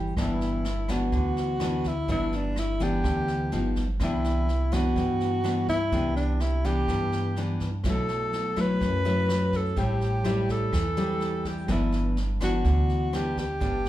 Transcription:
0.00 0.14 G1 medium
0.00 0.14 E3 medium
0.00 0.13 G3 medium
0.00 0.13 C4 soft
0.00 0.13 E4 medium
0.17 1.08 G1 medium
0.17 1.11 G2 medium
0.17 0.65 E3 medium
0.17 0.65 B3 medium
0.17 0.65 D4 medium
0.17 kick medium
0.17 cross-stick medium
0.17 snare soft
0.21 0.93 E4 medium
0.41 snare soft
0.64 snare soft
0.88 1.57 E3 medium
0.88 1.57 B3 medium
0.88 1.57 D4 medium
0.88 1.90 F#4 loud
0.88 kick soft
0.88 cross-stick medium
0.88 snare soft
1.12 2.04 D2 medium
1.12 2.06 D3 medium
1.12 kick medium
1.12 snare soft
1.37 snare soft
1.60 1.91 E3 medium
1.60 1.91 B3 soft
1.60 1.92 D4 medium
1.60 cross-stick medium
1.60 snare soft
1.84 2.10 E4 medium
1.84 kick soft
1.84 snare soft
2.08 3.00 G1 medium
2.08 3.02 G2 medium
2.08 2.56 E3 soft
2.08 2.56 B3 soft
2.08 2.57 D4 medium
2.08 2.38 E4 medium
2.08 kick medium
2.08 snare soft
2.32 2.60 D4 medium
2.32 snare soft
2.56 2.85 E4 medium
2.56 cross-stick medium
2.56 snare soft
2.80 3.48 E3 medium
2.80 3.49 B3 medium
2.80 3.49 D4 medium
2.80 3.78 G4 loud
2.80 kick soft
2.80 snare soft
3.04 3.49 D2 medium
3.04 3.50 D3 medium
3.04 kick medium
3.04 cross-stick medium
3.04 snare soft
3.28 snare soft
3.52 3.97 G1 medium
3.52 3.83 F3 soft
3.52 3.83 B3 medium
3.52 3.84 D#4 medium
3.52 snare soft
3.76 kick soft
3.76 snare soft
4.00 4.92 C2 medium
4.00 4.94 C3 medium
4.00 4.48 E3 medium
4.00 4.48 B3 medium
4.00 4.49 D4 medium
4.00 kick medium
4.00 cross-stick medium
4.00 snare soft
4.04 4.75 E4 medium
4.24 snare soft
4.48 snare soft
4.72 5.40 E3 medium
4.72 5.41 B3 medium
4.72 5.41 D4 medium
4.72 5.69 F#4 loud
4.72 kick soft
4.72 cross-stick medium
4.72 snare soft
4.96 5.90 G2 medium
4.96 5.88 G2 medium
4.96 kick medium
4.96 snare soft
5.20 snare soft
5.44 5.75 E3 soft
5.44 5.75 B3 medium
5.44 5.75 D4 medium
5.44 cross-stick medium
5.44 snare soft
5.68 6.14 E4 loud
5.68 kick soft
5.68 snare soft
5.92 6.84 C2 medium
5.92 6.86 C3 soft
5.92 6.40 E3 medium
5.92 6.41 B3 medium
5.92 6.41 D4 medium
5.92 kick medium
5.92 snare soft
6.16 6.42 D4 medium
6.16 snare soft
6.40 6.67 E4 medium
6.40 cross-stick medium
6.40 snare soft
6.64 7.33 E3 medium
6.64 7.33 B3 medium
6.64 7.33 D4 medium
6.64 7.61 G4 loud
6.64 kick soft
6.64 snare soft
6.88 7.80 G2 medium
6.88 7.82 G2 medium
6.88 kick medium
6.88 cross-stick medium
6.88 snare soft
7.12 snare soft
7.36 7.68 E3 medium
7.36 7.68 B3 soft
7.36 7.68 D4 medium
7.36 snare soft
7.60 kick soft
7.60 snare soft
7.84 8.76 B1 medium
7.84 8.79 B2 soft
7.84 8.53 F#3 medium
7.84 8.53 A3 medium
7.84 8.54 E4 medium
7.84 kick medium
7.84 cross-stick medium
7.84 snare soft
7.89 8.63 A4 loud
8.08 snare soft
8.33 snare soft
8.56 9.01 F#3 medium
8.56 9.01 A3 medium
8.56 9.01 E4 medium
8.56 kick soft
8.56 cross-stick medium
8.56 snare soft
8.61 9.58 B4 loud
8.80 9.73 F#2 medium
8.80 9.75 F#2 medium
8.80 kick medium
8.80 snare soft
9.05 9.73 F#3 medium
9.05 9.73 A3 medium
9.05 9.74 E4 medium
9.05 snare soft
9.29 cross-stick medium
9.29 snare soft
9.53 kick soft
9.53 snare soft
9.57 9.81 A4 medium
9.76 10.69 A1 medium
9.76 10.70 A2 medium
9.76 10.21 G3 medium
9.76 10.21 C4 medium
9.76 10.21 E4 medium
9.76 10.53 G4 medium
9.76 kick medium
9.76 snare soft
10.01 snare soft
10.24 10.72 G3 medium
10.24 10.73 C4 medium
10.24 10.73 E4 medium
10.24 cross-stick medium
10.24 snare soft
10.49 11.49 A4 loud
10.49 kick soft
10.49 snare soft
10.72 11.65 E2 medium
10.72 11.67 E3 medium
10.72 kick medium
10.72 cross-stick medium
10.72 snare soft
10.97 11.65 G3 medium
10.97 11.65 C4 medium
10.97 11.65 E4 medium
10.97 snare soft
11.21 snare soft
11.45 11.70 G4 medium
11.45 kick soft
11.45 snare soft
11.68 12.61 G1 medium
11.68 12.62 G2 medium
11.68 12.16 E3 medium
11.68 12.17 B3 medium
11.68 12.17 D4 medium
11.68 12.12 E4 medium
11.68 kick medium
11.68 cross-stick medium
11.68 snare soft
11.92 snare soft
12.17 snare soft
12.40 13.09 E3 medium
12.40 13.09 B3 medium
12.40 13.09 D4 medium
12.40 13.17 F#4 loud
12.40 kick soft
12.40 cross-stick medium
12.40 snare soft
12.64 13.57 D2 medium
12.64 13.59 D3 medium
12.64 kick medium
12.64 snare soft
12.89 snare soft
13.13 13.44 E3 soft
13.13 13.44 B3 medium
13.13 13.44 D4 medium
13.13 13.38 G4 loud
13.13 cross-stick medium
13.13 snare soft
13.37 13.89 G4 loud
13.37 kick soft
13.37 snare soft
13.60 13.89 G1 medium
13.60 13.89 G2 medium
13.60 13.89 B3 medium
13.60 13.89 D4 medium
13.60 kick medium
13.60 snare soft
13.85 snare soft

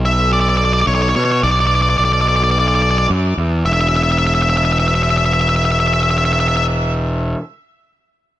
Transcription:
0.00 0.83 B1 medium
0.05 0.32 E5 loud
0.33 0.40 D5 medium
0.41 0.49 D5 medium
0.49 0.57 D5 medium
0.57 0.65 D5 medium
0.65 0.73 D5 medium
0.73 0.81 D5 medium
0.81 0.87 D5 medium
0.87 1.13 B1 loud
0.87 0.94 C#5 medium
0.95 1.02 C#5 medium
1.02 1.09 C#5 medium
1.09 1.16 C#5 medium
1.16 1.41 B2 medium
1.16 1.23 C#5 medium
1.25 1.31 C#5 medium
1.32 1.39 C#5 medium
1.43 1.95 B1 loud
1.43 1.51 D5 medium
1.51 1.59 D5 medium
1.60 1.66 D5 medium
1.67 1.74 D5 medium
1.75 1.82 D5 medium
1.82 1.89 D5 medium
1.90 1.97 D5 medium
1.98 3.06 B1 medium
1.98 2.04 D5 medium
2.05 2.13 D5 medium
2.13 2.21 D5 medium
2.21 2.28 D5 medium
2.28 2.36 D5 medium
2.36 2.43 D5 medium
2.44 2.51 D5 medium
2.51 2.59 D5 medium
2.59 2.67 D5 medium
2.68 2.75 D5 medium
2.75 2.82 D5 medium
2.82 2.90 D5 medium
2.91 2.98 D5 medium
2.98 3.06 D5 medium
3.10 3.35 F#2 medium
3.37 3.62 E2 medium
3.65 7.33 E1 loud
3.65 3.73 E5 medium
3.73 3.80 E5 medium
3.81 3.88 E5 medium
3.89 3.96 E5 medium
3.97 4.03 E5 medium
4.03 4.11 E5 medium
4.12 4.18 E5 medium
4.19 4.26 E5 medium
4.27 4.34 E5 medium
4.35 4.42 E5 medium
4.42 4.49 E5 medium
4.50 4.57 E5 medium
4.57 4.65 E5 medium
4.65 4.72 E5 medium
4.73 4.79 E5 medium
4.80 4.87 E5 medium
4.88 4.95 E5 medium
4.95 5.03 E5 medium
5.03 5.10 E5 medium
5.11 5.17 E5 medium
5.18 5.25 E5 medium
5.26 5.33 E5 medium
5.34 5.41 E5 medium
5.41 5.49 E5 medium
5.49 5.56 E5 medium
5.56 5.64 E5 medium
5.65 5.71 E5 medium
5.72 5.79 E5 medium
5.80 5.87 E5 medium
5.87 5.93 E5 medium
5.94 6.01 E5 medium
6.03 6.10 E5 medium
6.11 6.18 E5 medium
6.18 6.25 E5 medium
6.25 6.32 E5 medium
6.33 6.40 E5 medium
6.40 6.48 E5 medium
6.48 6.56 E5 medium
6.57 6.64 E5 medium

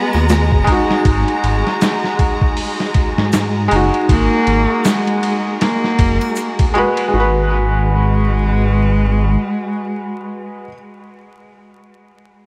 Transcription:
0.00 0.62 G#3 medium
0.00 7.15 G#3 medium
0.00 0.68 B3 medium
0.00 0.64 F#4 medium
0.00 7.15 G#4 medium
0.00 0.66 B4 loud
0.00 7.15 A#5 medium
0.13 0.54 D#2 loud
0.13 snare soft
0.13 triangle medium
0.29 snare loud
0.29 ride medium
0.29 shaker medium
0.52 0.66 F#1 medium
0.52 kick medium
0.64 3.66 G#3 medium
0.64 3.68 D#4 medium
0.64 kick medium
0.64 ride medium
0.72 3.70 F#4 loud
0.91 snare medium
1.05 1.25 G#1 medium
1.05 kick loud
1.05 ride medium
1.28 ride soft
1.44 1.63 G#1 medium
1.44 ride medium
1.67 snare medium
1.81 snare loud
1.81 ride medium
1.81 shaker medium
2.04 snare soft
2.19 kick medium
2.19 ride medium
2.41 kick medium
2.57 open hi-hat medium
2.80 snare medium
2.94 kick medium
2.94 ride medium
3.18 3.68 G#2 medium
3.18 snare medium
3.33 snare loud
3.33 ride medium
3.33 shaker medium
3.68 3.91 F#1 medium
3.68 6.70 G#3 loud
3.68 6.72 D#4 medium
3.68 ride medium
3.76 6.74 F#4 loud
3.94 ride soft
4.09 4.29 G#1 loud
4.09 4.89 A#3 loud
4.09 kick loud
4.09 ride medium
4.47 4.67 G#1 medium
4.47 ride medium
4.85 5.64 G#3 loud
4.85 snare loud
4.85 ride medium
4.85 shaker medium
5.07 ride soft
5.23 ride medium
5.61 6.76 A#3 loud
5.61 snare loud
5.61 ride medium
5.84 snare soft
5.99 6.19 F#1 loud
5.99 kick medium
5.99 ride medium
6.21 ride soft
6.21 triangle medium
6.36 ride medium
6.36 shaker medium
6.59 kick medium
6.59 ride medium
6.74 7.07 G#3 loud
6.74 7.12 F#4 medium
6.74 7.18 B4 loud
6.74 ride soft
6.97 ride medium
7.08 10.62 G#3 medium
7.14 9.37 G#1 loud
7.14 10.68 G#3 medium
7.14 10.68 F#4 medium
7.20 10.74 B4 medium

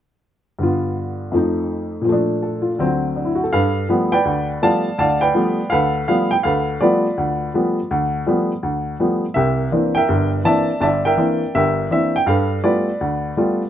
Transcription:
0.59 1.32 G2 soft
0.59 1.33 D3 soft
0.59 1.34 B3 soft
0.63 1.34 F4 medium
1.32 2.05 F2 medium
1.32 2.04 F3 soft
1.32 2.07 A3 soft
1.37 2.08 D#4 soft
2.01 2.77 A#2 soft
2.01 2.78 F3 soft
2.09 2.80 A3 soft
2.09 2.82 D4 medium
2.43 2.70 A4 soft
2.62 2.87 F4 soft
2.79 3.52 D2 soft
2.79 3.52 D3 soft
2.79 3.52 F#3 medium
2.79 3.52 C4 medium
3.16 3.32 D4 soft
3.25 3.40 E4 soft
3.35 3.46 F#4 medium
3.44 3.51 A4 soft
3.53 3.84 G2 medium
3.53 4.21 A4 medium
3.53 4.11 B4 medium
3.53 3.86 F5 medium
3.89 4.13 F3 soft
3.89 4.14 G3 soft
3.89 4.14 A3 soft
3.89 4.14 B3 medium
4.12 4.81 B4 medium
4.12 4.62 D5 medium
4.12 4.46 G5 medium
4.25 4.56 D2 medium
4.62 4.86 F3 soft
4.62 4.87 G3 soft
4.62 4.86 A3 soft
4.62 4.87 B3 soft
4.62 4.99 D5 medium
4.62 4.99 F5 medium
4.62 4.97 A5 medium
4.98 5.29 D2 medium
4.98 5.21 D5 medium
4.98 5.68 F5 medium
4.98 5.22 A5 medium
5.21 5.70 B4 medium
5.21 5.90 D5 medium
5.21 5.72 G5 medium
5.34 5.59 F3 soft
5.34 5.59 G3 soft
5.34 5.59 A3 soft
5.34 5.60 B3 medium
5.70 6.03 D2 medium
5.70 6.40 A4 medium
5.70 6.40 B4 medium
5.70 6.07 F5 medium
6.08 6.32 F3 soft
6.08 6.33 G3 soft
6.08 6.33 A3 soft
6.08 6.33 B3 medium
6.08 6.29 F5 medium
6.31 6.36 G5 medium
6.43 6.76 D2 medium
6.43 7.13 A4 medium
6.43 6.81 B4 medium
6.43 6.81 F5 medium
6.81 7.06 F3 soft
6.81 7.05 G3 soft
6.81 7.06 A3 soft
6.81 7.06 B3 medium
6.81 7.86 F4 soft
6.81 7.86 B4 medium
6.81 7.85 D5 medium
7.17 7.48 D2 medium
7.54 7.78 F3 soft
7.54 7.79 G3 soft
7.54 7.79 A3 soft
7.54 7.79 B3 medium
7.91 8.21 D2 medium
8.27 8.51 F3 medium
8.27 8.51 G3 soft
8.27 8.51 A3 soft
8.27 8.52 B3 medium
8.63 8.94 D2 medium
9.00 9.24 F3 soft
9.00 9.24 G3 soft
9.00 9.25 A3 soft
9.00 9.24 B3 medium
9.34 9.67 C2 medium
9.34 10.05 G4 medium
9.34 9.96 A#4 soft
9.34 9.68 E5 medium
9.72 9.96 E3 soft
9.72 9.97 A#3 soft
9.72 9.97 C4 soft
9.72 9.97 D4 medium
9.95 10.65 A#4 medium
9.95 10.45 E5 medium
9.95 10.29 G5 medium
10.09 10.40 G1 medium
10.09 10.40 G2 medium
10.44 10.69 E3 soft
10.44 10.69 A#3 soft
10.44 10.69 C4 soft
10.44 10.70 D4 medium
10.44 10.82 D5 medium
10.44 10.82 E5 medium
10.44 10.80 A5 medium
10.80 11.12 G1 medium
10.80 11.51 D5 medium
10.80 11.05 E5 medium
10.80 10.87 A5 medium
11.05 11.54 A#4 medium
11.05 11.53 E5 medium
11.05 11.55 G5 medium
11.17 11.42 E3 soft
11.17 11.42 A#3 soft
11.17 11.42 C4 soft
11.17 11.42 D4 medium
11.55 11.86 G1 medium
11.55 12.24 G4 medium
11.55 12.23 A#4 medium
11.55 11.88 E5 medium
11.91 12.15 E3 soft
11.91 12.15 A#3 soft
11.91 12.15 C4 soft
11.91 12.16 D4 soft
11.91 12.15 E5 medium
12.16 12.28 G5 medium
12.26 12.58 G2 medium
12.26 12.97 A4 medium
12.26 12.63 B4 soft
12.26 12.61 F5 medium
12.64 12.88 G3 medium
12.64 12.88 A3 soft
12.64 12.88 B3 soft
12.64 12.88 F4 medium
12.64 13.69 B4 medium
12.64 13.69 D5 medium
13.01 13.32 D2 medium
13.37 13.61 G3 medium
13.37 13.61 A3 soft
13.37 13.61 B3 soft
13.37 13.62 F4 medium

